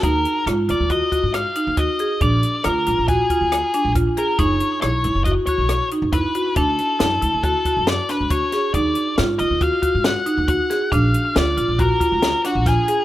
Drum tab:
HH |xxxxxxxxxx|xxxxxxxxxx|xxxxxxxxxx|xxxxxxxxxx|
SD |--r---r---|--r---r---|--r---r---|--o---oo-o|
BD |o---oo--o-|o---oo--o-|o---oo--o-|o---oo--o-|

HH |xxxxxxxxxx|xxxxxxxxxx|
SD |--o---o--o|--o---ooo-|
BD |o---oo--o-|o---oo--o-|